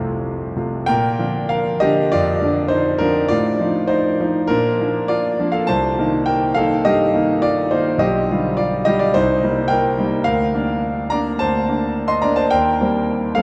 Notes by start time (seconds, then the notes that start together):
Already playing: F1 C2 F2 C3 A3 F4 C5 D5 A5 C6 D6
0.56 C3 A3 F4
0.86 A#2 A#4 G5
1.19 D3 F3 D4
1.49 A#4 F5
1.80 D3 F3 D4 G4 D#5
2.12 F2 F4 D5
2.42 D3 F3 D4
2.68 D#4 C5
2.98 D3 F3 D4 A#4
3.28 A2 F4 D5
3.61 F3 D#4
3.87 D#4 C5
4.20 F3 D#4
4.47 A#2 D4 A#4
4.81 F3 A#3 D4
5.08 F4 D5
5.39 F3 A#3 D4
5.52 A4 F5
5.67 C2 C5 A5
5.98 D#3 A#3 D#4
6.26 A#4 G5
6.54 D#3 A#3 D#4 A4 F5
6.85 G2 G4 D#5
7.15 D#3 A#3 D#4
7.42 F4 D5
7.71 D#3 A#3 D#4 C5
7.98 B1 G4 D#5
8.31 D3 G3 F4
8.57 F4 D5
8.85 D3 G3 F4 G4 D#5
8.99 F4 D5
9.14 C2 D#4 C5
9.44 G3 A#3 D#4
9.68 A#4 G5
9.98 G3 A#3 D#4
10.24 D2 A#4 F5
10.54 A#3 D4
11.10 A#3 D4 D5 A#5
11.39 D2 C5 A5
11.69 A#3 D4
12.08 D#5 C6
12.22 A#3 D4 D5 A#5
12.36 C5 A5
12.51 D#2 A#4 G5
12.81 G3 A#3 C4
13.35 G3 A#3 C4 A4 F5